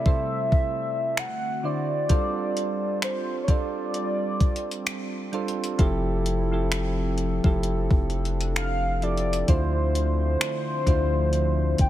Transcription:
Already playing: C3 G3 A3 C4 E4 F4 A4 D5 E5
0.05 C3 C4 E4 A4 C5, kick
0.52 kick
1.17 D3 C4 F#4 F#5, finger snap
1.63 D3 D4 E4 F#4 C5 D5
2.09 G3 D4 F4 A4 C5, kick, closed hi-hat
2.57 closed hi-hat
3.02 C5, finger snap, closed hi-hat
3.44 C#5
3.48 G3 D4 F4 A4 C5 D5, kick, closed hi-hat
3.94 closed hi-hat
4.41 kick, closed hi-hat
4.56 closed hi-hat
4.71 closed hi-hat
4.86 finger snap, closed hi-hat
5.32 G3 D4 F4 A4 C5, closed hi-hat
5.48 closed hi-hat
5.64 closed hi-hat
5.78 F1 F3 C4 E4 G4 A4, kick, closed hi-hat
6.26 closed hi-hat
6.52 F3 C4 E4 G4 A4
6.72 finger snap, closed hi-hat
7.18 closed hi-hat
7.44 F1 F3 C4 E4 G4 A4, kick
7.63 D4, closed hi-hat
7.91 F1, kick
8.10 closed hi-hat
8.25 closed hi-hat
8.41 closed hi-hat
8.56 F5, finger snap, closed hi-hat
9.02 F3 C4 E4 G4 A4 D5, closed hi-hat
9.17 closed hi-hat
9.33 closed hi-hat
9.47 D2 D3 F3 A3 D4 E4 F4 C5, kick, closed hi-hat
9.95 closed hi-hat
10.41 finger snap, closed hi-hat
10.86 D2 D3 D4 E4 F4 C5, kick, closed hi-hat
11.33 closed hi-hat
11.78 G1 G5, kick, closed hi-hat

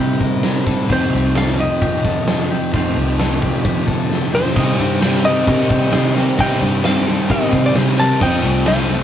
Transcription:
Already playing: C3 G3 C4 D#4 G4 C5 A#5
0.20 A#4, kick, closed hi-hat
0.43 A#4, snare, closed hi-hat
0.66 C3 G3 C4 A4, kick, closed hi-hat
0.89 F2 C3 D#3 F3 A3 D#4 C5, kick, closed hi-hat
1.13 C2 G4, closed hi-hat
1.25 snare
1.35 A4 F5, snare, closed hi-hat
1.59 G4 D#5, closed hi-hat
1.81 F3 G4, kick, closed hi-hat
2.04 A4, kick, closed hi-hat
2.27 A4, snare, closed hi-hat
2.50 F2 C3 F3 G4, closed hi-hat
2.72 F2 C3 D#3 F3 A3 D#4 C5, kick, closed hi-hat
2.96 C2 G4, closed hi-hat
3.19 A4, snare, closed hi-hat
3.41 G4, kick, closed hi-hat
3.64 F3 G4, kick, closed hi-hat
3.87 A4, kick, closed hi-hat
4.10 A4, snare
4.32 F2 C3 F3 G4 C5, snare
4.45 snare
4.55 C3 D#3 G3 C4 G4 D#5, kick, crash
4.79 G2 D5, crash
5.01 C3 D#3 G3 C4 G4 C5, snare, crash
5.24 G3 C4 G4 A4 D#5, crash
5.46 C3 D#3 G3 C4 A#4, kick, crash
5.50 G4
5.70 C3 G3 C4 C5, kick, crash
5.92 C3 D#3 G3 C4 C5, snare, crash
5.96 G4
6.16 C3 D#3 G3 C4 G4 A#4, crash
6.39 C3 D#3 G3 C4 G4 D#5 G5, kick, crash
6.61 G2 D5, crash
6.84 C3 D#3 G3 C4 G4 C5 F5, snare, crash
7.06 G3 C4 G4 A4, crash
7.29 C3 D#3 G3 C4 G4 A#4 D#5, kick, crash
7.52 C3 G3 C4 C5, kick, crash
7.66 D5
7.75 C3 D#3 G3 C4 G4 C5, snare, crash
7.98 C3 D#3 G3 C4 G4 A#4 A5, crash
8.20 F2 C3 F3 A3 C4 F4 D#5 G5, kick, crash
8.44 C2 D5, crash
8.66 F2 C3 F3 A3 C4 F4 C5 F5, snare, crash
8.89 A3 C4 F4 A4, crash

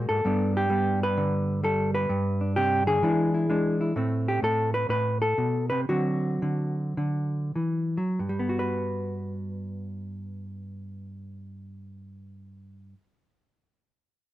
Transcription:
Already playing: G#3 A#3 F#4
0.09 G#2 A4
0.25 G2 G3 B3 D4
0.57 G4
0.70 G3 B3
1.03 B4
1.17 D3
1.63 G3 A4
1.95 B4
2.09 G2
2.41 D4
2.56 C3 G4
2.87 D3 G#4
3.03 E3 G#3 D4 E4
3.34 E4
3.50 G#3 D4
3.81 E4
3.96 A2 A3 C4
4.28 G4
4.42 A2 A4
4.74 B4
4.89 A2 B4
5.22 A4
5.38 B2
5.70 C3 B4
5.89 D3 F#3 C4 F#4
6.42 D3
6.97 D3
7.56 E3
7.97 F#3
8.19 G2
8.29 G3
8.39 B3
8.49 F#4
8.59 B4

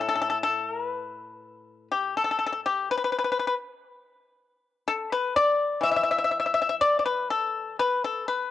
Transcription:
Already playing: A2
0.01 A4
0.09 A4
0.16 A4
0.22 A4
0.30 A4
0.43 A4
0.70 A#4
0.86 B4
1.92 G4
2.17 A4
2.24 A4
2.31 A4
2.39 A4
2.46 A4
2.52 A4
2.66 G4
2.91 B4
2.97 B4
3.04 B4
3.12 B4
3.18 B4
3.24 B4
3.32 B4
3.39 B4
3.47 B4
4.88 A4
5.12 B4
5.36 D5
5.81 E3 E5
5.91 E5
5.96 E5
6.03 E5
6.11 E5
6.18 E5
6.24 E5
6.31 E5
6.40 E5
6.46 E5
6.54 E5
6.62 E5
6.69 E5
6.81 D5
6.99 D5
7.06 B4
7.30 A4
7.79 B4
8.04 A4
8.28 B4

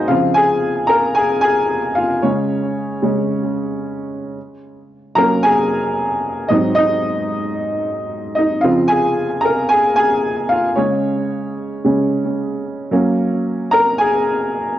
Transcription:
Already playing: F#4 G#4 C5 D#5 F5 F#5
0.08 C#3 F3 C4 F4 F5
0.34 G#4 G#5
0.87 A#4 A#5
1.15 G#4 G#5
1.41 G#4 G#5
1.95 F4 F5
2.22 C#3 G#3 C#4 C#5
3.02 C#3 G#3 C#4
5.15 F#3 A#3 C#4 A#4 A#5
5.43 G#4 G#5
6.48 G#2 F#3 C4 D#4 D#5
6.75 D#4 D#5
8.35 D#4 D#5
8.61 C#3 F3 C4 F4 F5
8.88 G#4 G#5
9.41 A#4 A#5
9.69 G#4 G#5
9.96 G#4 G#5
10.49 F4 F5
10.76 C#3 G#3 C#4 C#5
11.84 C#3 G#3 C#4
12.91 F#3 A#3 C#4
13.71 A#4 A#5
13.98 G#4 G#5

